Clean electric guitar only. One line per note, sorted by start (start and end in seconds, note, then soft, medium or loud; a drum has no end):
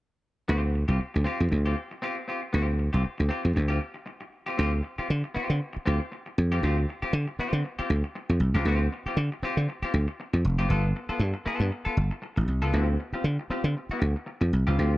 0.48 0.69 C4 medium
0.48 0.62 F4 medium
0.48 0.61 G4 medium
0.62 muted clean electric guitar stroke soft
0.75 muted clean electric guitar stroke soft
0.88 0.99 C4 soft
0.88 1.00 F4 soft
0.88 0.99 G4 soft
1.00 muted clean electric guitar stroke soft
1.14 muted clean electric guitar stroke soft
1.24 1.42 C4 medium
1.24 1.40 F4 loud
1.24 1.39 G4 medium
1.40 muted clean electric guitar stroke soft
1.51 muted clean electric guitar stroke soft
1.66 1.75 C4 medium
1.66 1.76 F4 medium
1.66 1.77 G4 medium
1.76 muted clean electric guitar stroke soft
1.91 muted clean electric guitar stroke soft
2.02 2.19 C4 medium
2.02 2.17 F4 medium
2.02 2.16 G4 medium
2.17 muted clean electric guitar stroke soft
2.28 2.42 C4 medium
2.28 2.42 F4 medium
2.28 2.41 G4 medium
2.42 muted clean electric guitar stroke soft
2.53 2.74 C4 medium
2.53 2.68 F4 medium
2.53 2.67 G4 medium
2.68 muted clean electric guitar stroke soft
2.79 muted clean electric guitar stroke soft
2.93 3.02 C4 soft
2.93 3.03 F4 soft
2.93 3.03 G4 medium
3.04 muted clean electric guitar stroke soft
3.18 muted clean electric guitar stroke soft
3.29 3.47 C4 medium
3.29 3.44 F4 medium
3.29 3.42 G4 medium
3.43 muted clean electric guitar stroke soft
3.55 muted clean electric guitar stroke soft
3.68 3.79 C4 medium
3.68 3.79 F4 medium
3.68 3.80 G4 medium
3.94 muted clean electric guitar stroke soft
4.06 muted clean electric guitar stroke soft
4.21 muted clean electric guitar stroke soft
4.46 4.56 C4 medium
4.46 4.57 F4 medium
4.46 4.58 G4 medium
4.57 4.75 C4 medium
4.57 4.73 F4 medium
4.57 4.72 G4 loud
4.73 muted clean electric guitar stroke soft
4.83 muted clean electric guitar stroke soft
4.98 5.08 C4 soft
4.98 5.08 F4 medium
4.98 5.09 G4 medium
5.09 muted clean electric guitar stroke soft
5.24 muted clean electric guitar stroke soft
5.35 5.55 C4 medium
5.35 5.50 F4 medium
5.35 5.48 G4 medium
5.50 muted clean electric guitar stroke soft
5.73 muted clean electric guitar stroke soft
5.86 6.02 C4 medium
5.86 6.00 F4 medium
5.86 5.99 G4 medium
6.00 muted clean electric guitar stroke soft
6.12 muted clean electric guitar stroke soft
6.26 muted clean electric guitar stroke soft
6.52 6.62 C4 medium
6.52 6.63 F4 medium
6.52 6.63 G4 medium
6.63 6.79 C4 medium
6.63 6.78 F4 loud
6.63 6.77 G4 medium
6.78 muted clean electric guitar stroke soft
6.89 muted clean electric guitar stroke soft
7.02 7.12 C4 soft
7.02 7.12 F4 medium
7.02 7.13 G4 medium
7.13 muted clean electric guitar stroke soft
7.28 muted clean electric guitar stroke soft
7.40 7.59 C4 medium
7.40 7.53 F4 medium
7.40 7.52 G4 medium
7.53 muted clean electric guitar stroke soft
7.64 muted clean electric guitar stroke soft
7.79 7.89 C4 medium
7.79 7.90 F4 medium
7.79 7.90 G4 medium
7.91 muted clean electric guitar stroke soft
8.04 muted clean electric guitar stroke soft
8.15 muted clean electric guitar stroke soft
8.30 muted clean electric guitar stroke medium
8.55 8.65 C4 medium
8.55 8.66 F4 medium
8.55 8.67 G4 medium
8.66 8.86 C4 medium
8.66 8.80 F4 medium
8.66 8.79 G4 medium
8.80 muted clean electric guitar stroke soft
8.92 muted clean electric guitar stroke medium
9.06 9.16 C4 medium
9.06 9.17 F4 medium
9.06 9.17 G4 medium
9.17 muted clean electric guitar stroke soft
9.32 muted clean electric guitar stroke soft
9.43 9.60 C4 medium
9.43 9.57 F4 loud
9.43 9.55 G4 loud
9.56 muted clean electric guitar stroke medium
9.69 muted clean electric guitar stroke soft
9.83 9.93 C4 medium
9.83 9.93 F4 medium
9.83 9.94 G4 medium
9.94 muted clean electric guitar stroke soft
10.08 muted clean electric guitar stroke soft
10.20 muted clean electric guitar stroke soft
10.33 muted clean electric guitar stroke soft
10.59 10.69 C4 medium
10.59 10.69 F4 medium
10.59 10.71 G4 medium
10.69 10.86 B3 medium
10.69 10.84 F4 loud
10.69 10.83 A4 medium
10.84 muted clean electric guitar stroke soft
10.96 muted clean electric guitar stroke soft
11.09 11.19 B3 medium
11.09 11.20 F4 medium
11.09 11.20 A4 medium
11.20 muted clean electric guitar stroke soft
11.34 muted clean electric guitar stroke soft
11.46 11.67 B3 loud
11.46 11.61 F4 medium
11.46 11.60 A4 medium
11.61 muted clean electric guitar stroke medium
11.71 muted clean electric guitar stroke soft
11.85 11.95 B3 medium
11.85 11.96 F4 medium
11.85 11.97 A4 medium
11.97 muted clean electric guitar stroke soft
12.11 muted clean electric guitar stroke medium
12.22 muted clean electric guitar stroke soft
12.36 muted clean electric guitar stroke soft
12.62 12.74 B3 medium
12.62 12.73 F4 medium
12.62 12.77 A4 medium
12.73 12.94 C4 medium
12.73 12.88 F4 medium
12.73 12.87 G4 medium
12.88 muted clean electric guitar stroke soft
13.00 muted clean electric guitar stroke soft
13.14 13.24 C4 soft
13.14 13.24 F4 medium
13.14 13.25 G4 medium
13.25 muted clean electric guitar stroke soft
13.39 muted clean electric guitar stroke soft
13.50 13.68 C4 medium
13.50 13.65 F4 medium
13.50 13.64 G4 medium
13.65 muted clean electric guitar stroke soft
13.77 muted clean electric guitar stroke soft
13.91 14.00 C4 medium
13.91 14.01 F4 medium
13.91 14.02 G4 medium
14.01 muted clean electric guitar stroke soft
14.16 muted clean electric guitar stroke soft
14.26 muted clean electric guitar stroke soft
14.41 muted clean electric guitar stroke medium
14.67 14.77 C4 medium
14.67 14.78 F4 medium
14.67 14.79 G4 medium
14.78 14.95 C4 medium
14.78 14.94 F4 medium
14.78 14.93 G4 loud
14.94 muted clean electric guitar stroke soft